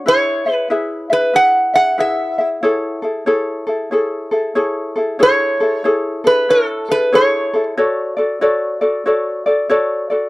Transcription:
0.06 ukulele E4 G#4 B4 E5, resonator guitar played with a steel bar C#5
0.46 ukulele E4 G#4 E5
0.53 resonator guitar played with a steel bar B4
0.70 ukulele E4 G#4 B4 E5
1.10 ukulele E4 G#4 E5, resonator guitar played with a steel bar B4
1.34 ukulele E4 G#4 B4 E5, resonator guitar played with a steel bar F#5
1.74 ukulele E4 G#4 E5, resonator guitar played with a steel bar F#5
1.98 ukulele E4 G#4 B4 E5, resonator guitar played with a steel bar E5
2.38 ukulele E4 G#4 E5
2.63 ukulele E4 G#4 A4 C#5
3.02 ukulele E4 G#4 A4
3.26 ukulele E4 G#4 A4 C#5
3.67 ukulele E4 G#4 A4
3.91 ukulele E4 G#4 A4 C#5
4.31 ukulele E4 G#4 A4
4.55 ukulele E4 G#4 A4 C#5
4.96 ukulele E4 G#4 A4
5.19 ukulele E4 G#4 A4 C#5, resonator guitar played with a steel bar C#5
5.60 ukulele E4 G#4 A4
5.84 ukulele E4 G#4 A4 C#5
6.24 ukulele E4 G#4 A4, resonator guitar played with a steel bar B4
6.49 ukulele E4 A4 C#5, resonator guitar played with a steel bar A4
6.89 ukulele E4 G#4 A4, resonator guitar played with a steel bar B4
7.12 ukulele E4 G#4 A4 C#5, resonator guitar played with a steel bar C#5
7.53 ukulele E4 G#4 A4
7.77 ukulele F#4 A4 C#5 D5
8.17 ukulele F#4 A4 D5
8.41 ukulele F#4 A4 C#5 D5
8.81 ukulele F#4 A4 D5
9.06 ukulele F#4 A4 C#5 D5
9.46 ukulele F#4 A4 D5
9.69 ukulele F#4 A4 C#5 D5
10.10 ukulele F#4 A4 D5

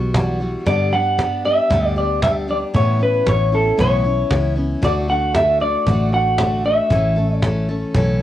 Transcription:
Already playing: fingered electric bass B1, steel-string acoustic guitar E3 G3 B3 F#4
0.14 steel-string acoustic guitar E3 G3 B3 F#4, cajon bass, cajon slap
0.40 steel-string acoustic guitar E3 G3 B3 F#4, cajon slap
0.66 steel-string acoustic guitar G2 D3 G3 B3 D4 G4, fingered electric bass G2, clean electric guitar D5, cajon bass, cajon slap
0.92 steel-string acoustic guitar G3 B3 D4 G4, clean electric guitar F#5, cajon slap
1.18 steel-string acoustic guitar G3 B3 D4 G4, cajon bass, cajon slap
1.45 steel-string acoustic guitar G3 B3 D4 G4, clean electric guitar E5, cajon slap
1.58 cajon slap
1.70 fingered electric bass D2, steel-string acoustic guitar G2 D3 G3 B3 D4 G4, cajon bass, cajon slap
1.87 clean electric guitar D5
1.96 steel-string acoustic guitar G3 B3 D4 G4, clean electric guitar D5, cajon slap
2.22 steel-string acoustic guitar G3 B3 D4 G4, clean electric guitar E5, cajon bass, cajon slap
2.48 steel-string acoustic guitar G3 B3 D4 G4, clean electric guitar D5, cajon slap
2.74 steel-string acoustic guitar A2 E3 B3 C#4 E4, fingered electric bass A2, clean electric guitar C#5, cajon bass, cajon slap
2.99 steel-string acoustic guitar B3 C#4 E4, clean electric guitar B4, cajon slap
3.26 fingered electric bass A1, steel-string acoustic guitar E3 B3 C#4 E4, clean electric guitar C#5, cajon bass, cajon slap
3.52 steel-string acoustic guitar B3 C#4 E4, clean electric guitar A4, cajon slap
3.66 cajon slap
3.78 fingered electric bass B1, steel-string acoustic guitar A2 E3 B3 C#4 E4, clean electric guitar C#5, cajon bass, cajon slap
4.04 steel-string acoustic guitar B3 C#4 E4, cajon slap
4.30 fingered electric bass C#2, steel-string acoustic guitar E3 B3 C#4 E4, cajon bass, cajon slap
4.56 steel-string acoustic guitar B3 C#4 E4, cajon slap
4.82 fingered electric bass D2, steel-string acoustic guitar D3 A3 D4 F#4, clean electric guitar D5, cajon bass, cajon slap
5.08 steel-string acoustic guitar A3 D4 F#4, clean electric guitar F#5, cajon slap
5.34 steel-string acoustic guitar D3 A3 D4 F#4, clean electric guitar E5, cajon bass, cajon slap
5.60 steel-string acoustic guitar A3 D4 F#4, clean electric guitar D5, cajon slap
5.86 fingered electric bass A1, steel-string acoustic guitar D3 A3 D4 F#4, cajon bass, cajon slap
6.00 cajon slap
6.12 steel-string acoustic guitar A3 D4 F#4, clean electric guitar F#5, cajon slap
6.38 steel-string acoustic guitar D3 A3 D4 F#4, cajon bass, cajon slap
6.64 steel-string acoustic guitar A3 D4 F#4, clean electric guitar E5, cajon slap
6.90 fingered electric bass A1, steel-string acoustic guitar A2 E3 A3 C#4 A4, cajon bass, cajon slap
7.16 steel-string acoustic guitar A3 C#4 A4, cajon slap
7.35 clean electric guitar D5
7.42 steel-string acoustic guitar E3 A3 C#4 A4, cajon bass, cajon slap
7.69 steel-string acoustic guitar A3 C#4 A4, cajon slap
7.94 fingered electric bass B1, steel-string acoustic guitar A2 E3 A3 C#4 A4, cajon bass, cajon slap

